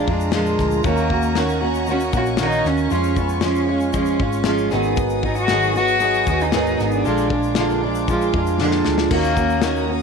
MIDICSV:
0, 0, Header, 1, 6, 480
1, 0, Start_track
1, 0, Key_signature, -6, "minor"
1, 0, Tempo, 516351
1, 790, Time_signature, 4, 2, 24, 8
1, 9316, End_track
2, 0, Start_track
2, 0, Title_t, "String section"
2, 0, Program_c, 0, 48
2, 0, Note_on_c, 0, 65, 64
2, 0, Note_on_c, 0, 74, 62
2, 0, Note_on_c, 0, 80, 59
2, 0, Note_on_c, 0, 82, 86
2, 755, Note_off_c, 0, 80, 0
2, 775, Note_on_c, 0, 66, 73
2, 775, Note_on_c, 0, 75, 65
2, 781, Note_off_c, 0, 74, 0
2, 783, Note_off_c, 0, 65, 0
2, 785, Note_on_c, 0, 85, 82
2, 2680, Note_off_c, 0, 82, 0
2, 2681, Note_off_c, 0, 66, 0
2, 2681, Note_off_c, 0, 75, 0
2, 2700, Note_on_c, 0, 80, 61
2, 2706, Note_on_c, 0, 73, 60
2, 2709, Note_on_c, 0, 65, 71
2, 4348, Note_off_c, 0, 85, 0
2, 4366, Note_off_c, 0, 80, 0
2, 4369, Note_off_c, 0, 73, 0
2, 4370, Note_off_c, 0, 65, 0
2, 4384, Note_on_c, 0, 87, 88
2, 4386, Note_on_c, 0, 66, 77
2, 4388, Note_on_c, 0, 80, 63
2, 4389, Note_on_c, 0, 71, 60
2, 6524, Note_off_c, 0, 87, 0
2, 6525, Note_off_c, 0, 66, 0
2, 6526, Note_off_c, 0, 71, 0
2, 6536, Note_on_c, 0, 65, 64
2, 6541, Note_on_c, 0, 70, 65
2, 6549, Note_on_c, 0, 86, 68
2, 8432, Note_off_c, 0, 80, 0
2, 8443, Note_off_c, 0, 65, 0
2, 8446, Note_off_c, 0, 70, 0
2, 8450, Note_off_c, 0, 86, 0
2, 8456, Note_on_c, 0, 73, 66
2, 8459, Note_on_c, 0, 87, 77
2, 8464, Note_on_c, 0, 66, 65
2, 8470, Note_on_c, 0, 82, 70
2, 9316, Note_off_c, 0, 66, 0
2, 9316, Note_off_c, 0, 73, 0
2, 9316, Note_off_c, 0, 82, 0
2, 9316, Note_off_c, 0, 87, 0
2, 9316, End_track
3, 0, Start_track
3, 0, Title_t, "Cello"
3, 0, Program_c, 1, 42
3, 0, Note_on_c, 1, 62, 98
3, 551, Note_off_c, 1, 62, 0
3, 790, Note_on_c, 1, 58, 104
3, 1471, Note_off_c, 1, 58, 0
3, 1777, Note_on_c, 1, 61, 99
3, 1879, Note_off_c, 1, 61, 0
3, 2018, Note_on_c, 1, 66, 83
3, 2119, Note_off_c, 1, 66, 0
3, 2253, Note_on_c, 1, 63, 108
3, 2481, Note_on_c, 1, 61, 91
3, 2495, Note_off_c, 1, 63, 0
3, 2965, Note_on_c, 1, 59, 73
3, 2979, Note_off_c, 1, 61, 0
3, 3196, Note_off_c, 1, 59, 0
3, 3203, Note_on_c, 1, 61, 92
3, 3642, Note_off_c, 1, 61, 0
3, 3675, Note_on_c, 1, 61, 82
3, 4353, Note_off_c, 1, 61, 0
3, 4878, Note_on_c, 1, 63, 78
3, 4984, Note_off_c, 1, 63, 0
3, 5000, Note_on_c, 1, 66, 116
3, 5328, Note_off_c, 1, 66, 0
3, 5365, Note_on_c, 1, 66, 122
3, 5967, Note_on_c, 1, 63, 88
3, 5981, Note_off_c, 1, 66, 0
3, 6077, Note_off_c, 1, 63, 0
3, 6090, Note_on_c, 1, 63, 96
3, 6414, Note_off_c, 1, 63, 0
3, 6449, Note_on_c, 1, 62, 89
3, 7361, Note_off_c, 1, 62, 0
3, 8478, Note_on_c, 1, 58, 106
3, 9156, Note_off_c, 1, 58, 0
3, 9316, End_track
4, 0, Start_track
4, 0, Title_t, "Steel-string acoustic guitar"
4, 0, Program_c, 2, 25
4, 68, Note_on_c, 2, 65, 58
4, 83, Note_on_c, 2, 62, 53
4, 92, Note_on_c, 2, 56, 48
4, 306, Note_off_c, 2, 56, 0
4, 309, Note_off_c, 2, 62, 0
4, 309, Note_off_c, 2, 65, 0
4, 312, Note_on_c, 2, 46, 88
4, 317, Note_on_c, 2, 53, 97
4, 317, Note_on_c, 2, 56, 104
4, 320, Note_on_c, 2, 62, 90
4, 326, Note_on_c, 2, 65, 92
4, 773, Note_off_c, 2, 53, 0
4, 777, Note_on_c, 2, 51, 68
4, 779, Note_off_c, 2, 56, 0
4, 781, Note_off_c, 2, 62, 0
4, 783, Note_on_c, 2, 58, 89
4, 785, Note_on_c, 2, 61, 80
4, 787, Note_off_c, 2, 65, 0
4, 790, Note_on_c, 2, 66, 78
4, 791, Note_off_c, 2, 46, 0
4, 1016, Note_off_c, 2, 66, 0
4, 1023, Note_off_c, 2, 51, 0
4, 1024, Note_off_c, 2, 61, 0
4, 1026, Note_off_c, 2, 58, 0
4, 1027, Note_on_c, 2, 66, 50
4, 1035, Note_on_c, 2, 61, 54
4, 1044, Note_on_c, 2, 58, 41
4, 1256, Note_off_c, 2, 58, 0
4, 1262, Note_off_c, 2, 61, 0
4, 1266, Note_off_c, 2, 66, 0
4, 1267, Note_on_c, 2, 58, 68
4, 1268, Note_on_c, 2, 51, 71
4, 1273, Note_on_c, 2, 61, 90
4, 1277, Note_on_c, 2, 66, 92
4, 1485, Note_off_c, 2, 66, 0
4, 1495, Note_off_c, 2, 61, 0
4, 1496, Note_on_c, 2, 66, 59
4, 1503, Note_off_c, 2, 58, 0
4, 1507, Note_on_c, 2, 61, 61
4, 1508, Note_off_c, 2, 51, 0
4, 1514, Note_on_c, 2, 58, 42
4, 1735, Note_off_c, 2, 58, 0
4, 1739, Note_on_c, 2, 51, 53
4, 1741, Note_off_c, 2, 61, 0
4, 1742, Note_off_c, 2, 66, 0
4, 1746, Note_on_c, 2, 58, 65
4, 1752, Note_on_c, 2, 61, 62
4, 1759, Note_on_c, 2, 66, 66
4, 1967, Note_off_c, 2, 66, 0
4, 1975, Note_off_c, 2, 61, 0
4, 1978, Note_on_c, 2, 66, 53
4, 1983, Note_off_c, 2, 51, 0
4, 1984, Note_off_c, 2, 58, 0
4, 1986, Note_on_c, 2, 61, 52
4, 1995, Note_on_c, 2, 58, 50
4, 2212, Note_off_c, 2, 58, 0
4, 2218, Note_on_c, 2, 51, 93
4, 2219, Note_off_c, 2, 61, 0
4, 2220, Note_off_c, 2, 66, 0
4, 2223, Note_on_c, 2, 58, 101
4, 2230, Note_on_c, 2, 61, 92
4, 2231, Note_on_c, 2, 66, 87
4, 2695, Note_off_c, 2, 51, 0
4, 2698, Note_off_c, 2, 61, 0
4, 2699, Note_on_c, 2, 53, 83
4, 2701, Note_off_c, 2, 58, 0
4, 2705, Note_on_c, 2, 56, 70
4, 2709, Note_off_c, 2, 66, 0
4, 2709, Note_on_c, 2, 61, 76
4, 2714, Note_on_c, 2, 65, 84
4, 2935, Note_off_c, 2, 65, 0
4, 2943, Note_off_c, 2, 53, 0
4, 2943, Note_off_c, 2, 61, 0
4, 2946, Note_off_c, 2, 56, 0
4, 2946, Note_on_c, 2, 65, 51
4, 2955, Note_on_c, 2, 61, 49
4, 2960, Note_on_c, 2, 56, 43
4, 3175, Note_off_c, 2, 56, 0
4, 3180, Note_off_c, 2, 61, 0
4, 3182, Note_off_c, 2, 65, 0
4, 3185, Note_on_c, 2, 53, 76
4, 3186, Note_on_c, 2, 56, 82
4, 3191, Note_on_c, 2, 61, 81
4, 3193, Note_on_c, 2, 65, 93
4, 3404, Note_off_c, 2, 65, 0
4, 3415, Note_on_c, 2, 65, 56
4, 3417, Note_off_c, 2, 61, 0
4, 3421, Note_off_c, 2, 56, 0
4, 3426, Note_off_c, 2, 53, 0
4, 3428, Note_on_c, 2, 61, 52
4, 3432, Note_on_c, 2, 56, 41
4, 3646, Note_off_c, 2, 56, 0
4, 3649, Note_off_c, 2, 61, 0
4, 3650, Note_on_c, 2, 53, 71
4, 3656, Note_off_c, 2, 65, 0
4, 3657, Note_on_c, 2, 56, 68
4, 3661, Note_on_c, 2, 61, 69
4, 3667, Note_on_c, 2, 65, 69
4, 3890, Note_off_c, 2, 65, 0
4, 3898, Note_off_c, 2, 53, 0
4, 3899, Note_off_c, 2, 61, 0
4, 3901, Note_on_c, 2, 65, 56
4, 3902, Note_off_c, 2, 56, 0
4, 3910, Note_on_c, 2, 61, 51
4, 3916, Note_on_c, 2, 56, 48
4, 4127, Note_off_c, 2, 56, 0
4, 4136, Note_off_c, 2, 61, 0
4, 4138, Note_on_c, 2, 53, 90
4, 4138, Note_on_c, 2, 56, 92
4, 4140, Note_off_c, 2, 65, 0
4, 4148, Note_on_c, 2, 61, 100
4, 4151, Note_on_c, 2, 65, 95
4, 4376, Note_off_c, 2, 65, 0
4, 4380, Note_on_c, 2, 68, 83
4, 4382, Note_off_c, 2, 53, 0
4, 4382, Note_off_c, 2, 56, 0
4, 4382, Note_off_c, 2, 61, 0
4, 4385, Note_on_c, 2, 63, 77
4, 4389, Note_on_c, 2, 51, 65
4, 4391, Note_on_c, 2, 59, 71
4, 4393, Note_on_c, 2, 54, 69
4, 4396, Note_on_c, 2, 44, 61
4, 4856, Note_off_c, 2, 63, 0
4, 4857, Note_off_c, 2, 68, 0
4, 4861, Note_on_c, 2, 68, 46
4, 4867, Note_on_c, 2, 63, 50
4, 4868, Note_off_c, 2, 51, 0
4, 4868, Note_off_c, 2, 59, 0
4, 4870, Note_off_c, 2, 54, 0
4, 4871, Note_off_c, 2, 44, 0
4, 4879, Note_on_c, 2, 59, 40
4, 4882, Note_on_c, 2, 54, 42
4, 5098, Note_off_c, 2, 54, 0
4, 5103, Note_off_c, 2, 68, 0
4, 5105, Note_off_c, 2, 63, 0
4, 5105, Note_on_c, 2, 51, 86
4, 5106, Note_off_c, 2, 59, 0
4, 5108, Note_on_c, 2, 44, 79
4, 5109, Note_on_c, 2, 54, 84
4, 5116, Note_on_c, 2, 63, 86
4, 5117, Note_on_c, 2, 59, 80
4, 5119, Note_on_c, 2, 68, 90
4, 5331, Note_off_c, 2, 68, 0
4, 5338, Note_off_c, 2, 63, 0
4, 5341, Note_off_c, 2, 59, 0
4, 5342, Note_on_c, 2, 68, 52
4, 5345, Note_off_c, 2, 51, 0
4, 5347, Note_off_c, 2, 44, 0
4, 5348, Note_off_c, 2, 54, 0
4, 5349, Note_on_c, 2, 63, 54
4, 5352, Note_on_c, 2, 59, 51
4, 5357, Note_on_c, 2, 54, 43
4, 5564, Note_off_c, 2, 54, 0
4, 5570, Note_off_c, 2, 59, 0
4, 5575, Note_on_c, 2, 54, 71
4, 5578, Note_off_c, 2, 63, 0
4, 5580, Note_off_c, 2, 68, 0
4, 5582, Note_on_c, 2, 59, 70
4, 5590, Note_on_c, 2, 63, 63
4, 5592, Note_on_c, 2, 68, 70
4, 5814, Note_off_c, 2, 68, 0
4, 5821, Note_off_c, 2, 54, 0
4, 5824, Note_off_c, 2, 59, 0
4, 5825, Note_on_c, 2, 68, 61
4, 5828, Note_off_c, 2, 63, 0
4, 5839, Note_on_c, 2, 63, 47
4, 5841, Note_on_c, 2, 59, 51
4, 5853, Note_on_c, 2, 54, 45
4, 6060, Note_off_c, 2, 54, 0
4, 6065, Note_off_c, 2, 59, 0
4, 6065, Note_on_c, 2, 44, 93
4, 6065, Note_on_c, 2, 51, 81
4, 6066, Note_off_c, 2, 68, 0
4, 6069, Note_off_c, 2, 63, 0
4, 6071, Note_on_c, 2, 54, 86
4, 6076, Note_on_c, 2, 59, 101
4, 6078, Note_on_c, 2, 68, 106
4, 6080, Note_on_c, 2, 63, 94
4, 6546, Note_off_c, 2, 44, 0
4, 6546, Note_off_c, 2, 51, 0
4, 6549, Note_off_c, 2, 54, 0
4, 6551, Note_off_c, 2, 59, 0
4, 6552, Note_on_c, 2, 46, 74
4, 6553, Note_off_c, 2, 63, 0
4, 6553, Note_on_c, 2, 50, 76
4, 6556, Note_on_c, 2, 53, 77
4, 6560, Note_on_c, 2, 56, 87
4, 6563, Note_on_c, 2, 62, 80
4, 6564, Note_off_c, 2, 68, 0
4, 6568, Note_on_c, 2, 65, 77
4, 6770, Note_off_c, 2, 65, 0
4, 6777, Note_off_c, 2, 62, 0
4, 6781, Note_on_c, 2, 65, 57
4, 6782, Note_off_c, 2, 56, 0
4, 6788, Note_on_c, 2, 62, 46
4, 6789, Note_off_c, 2, 46, 0
4, 6790, Note_off_c, 2, 50, 0
4, 6791, Note_off_c, 2, 53, 0
4, 6793, Note_on_c, 2, 56, 49
4, 6804, Note_on_c, 2, 53, 38
4, 7024, Note_off_c, 2, 65, 0
4, 7027, Note_off_c, 2, 56, 0
4, 7027, Note_off_c, 2, 62, 0
4, 7028, Note_off_c, 2, 53, 0
4, 7033, Note_on_c, 2, 50, 80
4, 7034, Note_on_c, 2, 46, 83
4, 7038, Note_on_c, 2, 56, 91
4, 7039, Note_on_c, 2, 53, 90
4, 7040, Note_on_c, 2, 62, 94
4, 7045, Note_on_c, 2, 65, 91
4, 7270, Note_off_c, 2, 50, 0
4, 7270, Note_off_c, 2, 65, 0
4, 7271, Note_off_c, 2, 46, 0
4, 7272, Note_off_c, 2, 56, 0
4, 7273, Note_off_c, 2, 53, 0
4, 7274, Note_off_c, 2, 62, 0
4, 7281, Note_on_c, 2, 65, 58
4, 7286, Note_on_c, 2, 62, 57
4, 7293, Note_on_c, 2, 56, 56
4, 7302, Note_on_c, 2, 53, 48
4, 7505, Note_off_c, 2, 53, 0
4, 7507, Note_off_c, 2, 56, 0
4, 7514, Note_off_c, 2, 65, 0
4, 7516, Note_on_c, 2, 53, 76
4, 7517, Note_off_c, 2, 62, 0
4, 7518, Note_on_c, 2, 56, 67
4, 7526, Note_on_c, 2, 62, 70
4, 7533, Note_on_c, 2, 65, 73
4, 7735, Note_off_c, 2, 65, 0
4, 7746, Note_on_c, 2, 65, 63
4, 7748, Note_off_c, 2, 62, 0
4, 7752, Note_off_c, 2, 53, 0
4, 7752, Note_off_c, 2, 56, 0
4, 7759, Note_on_c, 2, 62, 52
4, 7763, Note_on_c, 2, 56, 54
4, 7771, Note_on_c, 2, 53, 53
4, 7986, Note_off_c, 2, 53, 0
4, 7987, Note_off_c, 2, 65, 0
4, 7993, Note_off_c, 2, 62, 0
4, 7994, Note_on_c, 2, 46, 93
4, 7995, Note_off_c, 2, 56, 0
4, 7997, Note_on_c, 2, 53, 95
4, 7999, Note_on_c, 2, 50, 89
4, 8004, Note_on_c, 2, 65, 102
4, 8005, Note_on_c, 2, 56, 99
4, 8006, Note_on_c, 2, 62, 106
4, 8463, Note_off_c, 2, 53, 0
4, 8466, Note_on_c, 2, 51, 84
4, 8471, Note_off_c, 2, 46, 0
4, 8471, Note_off_c, 2, 56, 0
4, 8473, Note_off_c, 2, 50, 0
4, 8474, Note_off_c, 2, 62, 0
4, 8474, Note_on_c, 2, 58, 81
4, 8476, Note_off_c, 2, 65, 0
4, 8478, Note_on_c, 2, 61, 91
4, 8483, Note_on_c, 2, 66, 87
4, 8693, Note_off_c, 2, 66, 0
4, 8704, Note_off_c, 2, 61, 0
4, 8705, Note_on_c, 2, 66, 50
4, 8707, Note_off_c, 2, 51, 0
4, 8709, Note_off_c, 2, 58, 0
4, 8715, Note_on_c, 2, 61, 50
4, 8720, Note_on_c, 2, 58, 40
4, 8942, Note_off_c, 2, 58, 0
4, 8943, Note_on_c, 2, 51, 91
4, 8945, Note_off_c, 2, 61, 0
4, 8946, Note_off_c, 2, 66, 0
4, 8953, Note_on_c, 2, 58, 79
4, 8956, Note_on_c, 2, 61, 85
4, 8959, Note_on_c, 2, 66, 89
4, 9174, Note_off_c, 2, 66, 0
4, 9184, Note_off_c, 2, 61, 0
4, 9185, Note_on_c, 2, 66, 55
4, 9186, Note_off_c, 2, 51, 0
4, 9191, Note_off_c, 2, 58, 0
4, 9195, Note_on_c, 2, 61, 53
4, 9203, Note_on_c, 2, 58, 42
4, 9316, Note_off_c, 2, 58, 0
4, 9316, Note_off_c, 2, 61, 0
4, 9316, Note_off_c, 2, 66, 0
4, 9316, End_track
5, 0, Start_track
5, 0, Title_t, "Fingered electric bass"
5, 0, Program_c, 3, 33
5, 75, Note_on_c, 3, 41, 82
5, 515, Note_off_c, 3, 41, 0
5, 554, Note_on_c, 3, 38, 88
5, 773, Note_off_c, 3, 38, 0
5, 787, Note_on_c, 3, 39, 98
5, 1949, Note_off_c, 3, 39, 0
5, 1983, Note_on_c, 3, 34, 80
5, 2428, Note_off_c, 3, 34, 0
5, 2462, Note_on_c, 3, 39, 83
5, 2685, Note_off_c, 3, 39, 0
5, 2708, Note_on_c, 3, 41, 97
5, 3870, Note_off_c, 3, 41, 0
5, 3905, Note_on_c, 3, 32, 89
5, 4348, Note_off_c, 3, 32, 0
5, 4395, Note_on_c, 3, 32, 92
5, 5793, Note_off_c, 3, 32, 0
5, 5832, Note_on_c, 3, 39, 91
5, 6272, Note_off_c, 3, 39, 0
5, 6320, Note_on_c, 3, 32, 90
5, 6535, Note_off_c, 3, 32, 0
5, 6559, Note_on_c, 3, 34, 93
5, 7716, Note_off_c, 3, 34, 0
5, 7755, Note_on_c, 3, 41, 101
5, 8195, Note_off_c, 3, 41, 0
5, 8240, Note_on_c, 3, 38, 86
5, 8455, Note_off_c, 3, 38, 0
5, 8470, Note_on_c, 3, 39, 98
5, 9316, Note_off_c, 3, 39, 0
5, 9316, End_track
6, 0, Start_track
6, 0, Title_t, "Drums"
6, 71, Note_on_c, 9, 36, 105
6, 164, Note_off_c, 9, 36, 0
6, 191, Note_on_c, 9, 82, 59
6, 284, Note_off_c, 9, 82, 0
6, 295, Note_on_c, 9, 38, 124
6, 300, Note_on_c, 9, 82, 73
6, 388, Note_off_c, 9, 38, 0
6, 392, Note_off_c, 9, 82, 0
6, 428, Note_on_c, 9, 82, 49
6, 521, Note_off_c, 9, 82, 0
6, 548, Note_on_c, 9, 36, 88
6, 548, Note_on_c, 9, 38, 33
6, 550, Note_on_c, 9, 82, 44
6, 641, Note_off_c, 9, 36, 0
6, 641, Note_off_c, 9, 38, 0
6, 643, Note_off_c, 9, 82, 0
6, 661, Note_on_c, 9, 82, 57
6, 754, Note_off_c, 9, 82, 0
6, 775, Note_on_c, 9, 82, 59
6, 784, Note_on_c, 9, 36, 111
6, 868, Note_off_c, 9, 82, 0
6, 877, Note_off_c, 9, 36, 0
6, 902, Note_on_c, 9, 82, 54
6, 995, Note_off_c, 9, 82, 0
6, 1023, Note_on_c, 9, 36, 82
6, 1116, Note_off_c, 9, 36, 0
6, 1137, Note_on_c, 9, 82, 56
6, 1230, Note_off_c, 9, 82, 0
6, 1259, Note_on_c, 9, 38, 91
6, 1264, Note_on_c, 9, 82, 60
6, 1352, Note_off_c, 9, 38, 0
6, 1357, Note_off_c, 9, 82, 0
6, 1385, Note_on_c, 9, 82, 48
6, 1478, Note_off_c, 9, 82, 0
6, 1622, Note_on_c, 9, 82, 56
6, 1715, Note_off_c, 9, 82, 0
6, 1734, Note_on_c, 9, 82, 71
6, 1827, Note_off_c, 9, 82, 0
6, 1861, Note_on_c, 9, 82, 57
6, 1954, Note_off_c, 9, 82, 0
6, 1979, Note_on_c, 9, 82, 63
6, 1982, Note_on_c, 9, 36, 108
6, 2072, Note_off_c, 9, 82, 0
6, 2075, Note_off_c, 9, 36, 0
6, 2100, Note_on_c, 9, 82, 56
6, 2193, Note_off_c, 9, 82, 0
6, 2205, Note_on_c, 9, 38, 103
6, 2209, Note_on_c, 9, 82, 69
6, 2298, Note_off_c, 9, 38, 0
6, 2302, Note_off_c, 9, 82, 0
6, 2342, Note_on_c, 9, 82, 52
6, 2435, Note_off_c, 9, 82, 0
6, 2466, Note_on_c, 9, 38, 33
6, 2468, Note_on_c, 9, 82, 42
6, 2559, Note_off_c, 9, 38, 0
6, 2561, Note_off_c, 9, 82, 0
6, 2577, Note_on_c, 9, 82, 55
6, 2670, Note_off_c, 9, 82, 0
6, 2701, Note_on_c, 9, 82, 63
6, 2794, Note_off_c, 9, 82, 0
6, 2821, Note_on_c, 9, 82, 47
6, 2914, Note_off_c, 9, 82, 0
6, 2941, Note_on_c, 9, 36, 86
6, 2941, Note_on_c, 9, 82, 49
6, 3034, Note_off_c, 9, 36, 0
6, 3034, Note_off_c, 9, 82, 0
6, 3058, Note_on_c, 9, 82, 55
6, 3151, Note_off_c, 9, 82, 0
6, 3170, Note_on_c, 9, 38, 105
6, 3176, Note_on_c, 9, 82, 60
6, 3263, Note_off_c, 9, 38, 0
6, 3269, Note_off_c, 9, 82, 0
6, 3302, Note_on_c, 9, 82, 52
6, 3395, Note_off_c, 9, 82, 0
6, 3534, Note_on_c, 9, 82, 58
6, 3627, Note_off_c, 9, 82, 0
6, 3653, Note_on_c, 9, 82, 78
6, 3662, Note_on_c, 9, 36, 102
6, 3746, Note_off_c, 9, 82, 0
6, 3755, Note_off_c, 9, 36, 0
6, 3771, Note_on_c, 9, 82, 58
6, 3864, Note_off_c, 9, 82, 0
6, 3901, Note_on_c, 9, 36, 109
6, 3994, Note_off_c, 9, 36, 0
6, 4020, Note_on_c, 9, 82, 57
6, 4113, Note_off_c, 9, 82, 0
6, 4126, Note_on_c, 9, 38, 118
6, 4130, Note_on_c, 9, 82, 69
6, 4219, Note_off_c, 9, 38, 0
6, 4223, Note_off_c, 9, 82, 0
6, 4257, Note_on_c, 9, 82, 51
6, 4350, Note_off_c, 9, 82, 0
6, 4376, Note_on_c, 9, 38, 29
6, 4378, Note_on_c, 9, 82, 46
6, 4469, Note_off_c, 9, 38, 0
6, 4471, Note_off_c, 9, 82, 0
6, 4490, Note_on_c, 9, 82, 58
6, 4583, Note_off_c, 9, 82, 0
6, 4617, Note_on_c, 9, 82, 65
6, 4622, Note_on_c, 9, 36, 121
6, 4710, Note_off_c, 9, 82, 0
6, 4715, Note_off_c, 9, 36, 0
6, 4737, Note_on_c, 9, 82, 50
6, 4830, Note_off_c, 9, 82, 0
6, 4862, Note_on_c, 9, 36, 90
6, 4955, Note_off_c, 9, 36, 0
6, 4977, Note_on_c, 9, 82, 55
6, 5070, Note_off_c, 9, 82, 0
6, 5094, Note_on_c, 9, 38, 91
6, 5100, Note_on_c, 9, 82, 65
6, 5187, Note_off_c, 9, 38, 0
6, 5192, Note_off_c, 9, 82, 0
6, 5227, Note_on_c, 9, 82, 52
6, 5320, Note_off_c, 9, 82, 0
6, 5345, Note_on_c, 9, 82, 60
6, 5438, Note_off_c, 9, 82, 0
6, 5461, Note_on_c, 9, 82, 59
6, 5554, Note_off_c, 9, 82, 0
6, 5576, Note_on_c, 9, 82, 62
6, 5669, Note_off_c, 9, 82, 0
6, 5705, Note_on_c, 9, 82, 56
6, 5798, Note_off_c, 9, 82, 0
6, 5824, Note_on_c, 9, 82, 68
6, 5828, Note_on_c, 9, 36, 101
6, 5917, Note_off_c, 9, 82, 0
6, 5921, Note_off_c, 9, 36, 0
6, 5953, Note_on_c, 9, 82, 48
6, 6046, Note_off_c, 9, 82, 0
6, 6063, Note_on_c, 9, 38, 106
6, 6067, Note_on_c, 9, 82, 72
6, 6156, Note_off_c, 9, 38, 0
6, 6160, Note_off_c, 9, 82, 0
6, 6193, Note_on_c, 9, 82, 49
6, 6286, Note_off_c, 9, 82, 0
6, 6315, Note_on_c, 9, 38, 32
6, 6317, Note_on_c, 9, 82, 46
6, 6408, Note_off_c, 9, 38, 0
6, 6410, Note_off_c, 9, 82, 0
6, 6425, Note_on_c, 9, 82, 56
6, 6518, Note_off_c, 9, 82, 0
6, 6553, Note_on_c, 9, 82, 67
6, 6646, Note_off_c, 9, 82, 0
6, 6671, Note_on_c, 9, 82, 56
6, 6764, Note_off_c, 9, 82, 0
6, 6789, Note_on_c, 9, 36, 89
6, 6882, Note_off_c, 9, 36, 0
6, 6909, Note_on_c, 9, 82, 51
6, 7002, Note_off_c, 9, 82, 0
6, 7019, Note_on_c, 9, 38, 109
6, 7024, Note_on_c, 9, 82, 61
6, 7112, Note_off_c, 9, 38, 0
6, 7117, Note_off_c, 9, 82, 0
6, 7157, Note_on_c, 9, 82, 46
6, 7250, Note_off_c, 9, 82, 0
6, 7390, Note_on_c, 9, 82, 60
6, 7483, Note_off_c, 9, 82, 0
6, 7512, Note_on_c, 9, 36, 92
6, 7512, Note_on_c, 9, 82, 73
6, 7605, Note_off_c, 9, 36, 0
6, 7605, Note_off_c, 9, 82, 0
6, 7636, Note_on_c, 9, 82, 57
6, 7729, Note_off_c, 9, 82, 0
6, 7750, Note_on_c, 9, 36, 101
6, 7843, Note_off_c, 9, 36, 0
6, 7870, Note_on_c, 9, 82, 56
6, 7963, Note_off_c, 9, 82, 0
6, 7980, Note_on_c, 9, 38, 56
6, 8073, Note_off_c, 9, 38, 0
6, 8099, Note_on_c, 9, 38, 71
6, 8192, Note_off_c, 9, 38, 0
6, 8223, Note_on_c, 9, 38, 85
6, 8316, Note_off_c, 9, 38, 0
6, 8347, Note_on_c, 9, 38, 92
6, 8439, Note_off_c, 9, 38, 0
6, 8467, Note_on_c, 9, 36, 118
6, 8468, Note_on_c, 9, 49, 109
6, 8560, Note_off_c, 9, 36, 0
6, 8561, Note_off_c, 9, 49, 0
6, 8589, Note_on_c, 9, 82, 51
6, 8682, Note_off_c, 9, 82, 0
6, 8708, Note_on_c, 9, 36, 90
6, 8708, Note_on_c, 9, 82, 64
6, 8801, Note_off_c, 9, 36, 0
6, 8801, Note_off_c, 9, 82, 0
6, 8827, Note_on_c, 9, 82, 53
6, 8920, Note_off_c, 9, 82, 0
6, 8939, Note_on_c, 9, 38, 111
6, 8944, Note_on_c, 9, 82, 73
6, 9032, Note_off_c, 9, 38, 0
6, 9037, Note_off_c, 9, 82, 0
6, 9072, Note_on_c, 9, 82, 49
6, 9165, Note_off_c, 9, 82, 0
6, 9316, End_track
0, 0, End_of_file